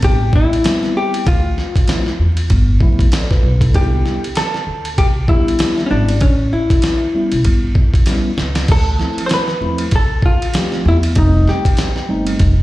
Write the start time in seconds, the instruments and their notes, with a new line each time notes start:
Already playing: tine electric piano G3 B3 C4 D4
0.02 upright bass A1, hollow-body jazz guitar G4, kick, ride
0.33 hollow-body jazz guitar E4, kick
0.53 ride
0.64 tine electric piano G3 B3 C4 E4, snare, hi-hat pedal, ride
0.83 snare
0.97 hollow-body jazz guitar G4
1.14 ride
1.26 upright bass D2, hollow-body jazz guitar F4, kick, ride
1.58 snare
1.76 kick, ride
1.87 tine electric piano F3 A3 C4 E4, snare, hi-hat pedal, ride
2.06 snare
2.19 upright bass E2
2.37 ride
2.50 upright bass G1, kick, ride
2.80 tine electric piano F3 A3 B3 E4, kick
2.99 kick, ride
3.12 tine electric piano A4 D5, snare, hi-hat pedal, ride
3.31 tine electric piano F4 B4, kick, snare
3.43 upright bass B1
3.61 tine electric piano E4 A4, kick, ride
3.74 upright bass C2, tine electric piano G3 B3 D4 D#4, hollow-body jazz guitar G4, kick, ride
3.82 tine electric piano E4
4.06 snare
4.24 ride
4.35 hollow-body jazz guitar A4, snare, hi-hat pedal, ride
4.54 snare
4.67 upright bass D2
4.85 ride
4.98 upright bass C2, hollow-body jazz guitar G4, kick, ride
5.28 tine electric piano G3 B3 D4 G4, hollow-body jazz guitar E4, kick
5.48 ride
5.59 snare, hi-hat pedal, ride
5.78 snare
5.86 tine electric piano G3 B3, hollow-body jazz guitar C#4
5.91 upright bass G#1, tine electric piano C#4 E4, hollow-body jazz guitar D4
6.09 ride
6.21 upright bass A1, hollow-body jazz guitar C#4, kick, ride
6.53 hollow-body jazz guitar E4
6.70 kick, ride
6.82 snare, hi-hat pedal, ride
7.14 tine electric piano G3 B3 C#4 E4
7.32 upright bass B1, ride
7.45 upright bass G1, kick, ride
7.75 kick
7.94 kick, ride
8.06 tine electric piano G3 B3 C#4 E4, snare, hi-hat pedal, ride
8.37 upright bass C#2, snare
8.55 snare, ride
8.68 upright bass D2, hollow-body jazz guitar A4, kick, crash
8.99 tine electric piano F3 A3 C4 E4, snare
9.18 ride
9.26 hollow-body jazz guitar C5, hi-hat pedal, ride
9.31 hollow-body jazz guitar B4, snare
9.48 snare
9.61 upright bass E2, tine electric piano F3 A3 C4 E4
9.78 ride
9.91 upright bass C2, kick, ride
9.96 hollow-body jazz guitar A4
10.22 hollow-body jazz guitar F4, kick
10.42 ride
10.54 tine electric piano F3 A3 C4 G4, snare, hi-hat pedal, ride
10.72 snare
10.85 upright bass E2, hollow-body jazz guitar E4
11.03 ride
11.15 upright bass F1, tine electric piano G3 A3 C4 D#4, hollow-body jazz guitar D#4, kick, ride
11.48 hollow-body jazz guitar G4, snare
11.65 kick, ride
11.77 snare, hi-hat pedal, ride
11.96 snare
12.08 upright bass G1, tine electric piano G3 A3 C4 D#4
12.27 ride
12.39 upright bass F1, kick, ride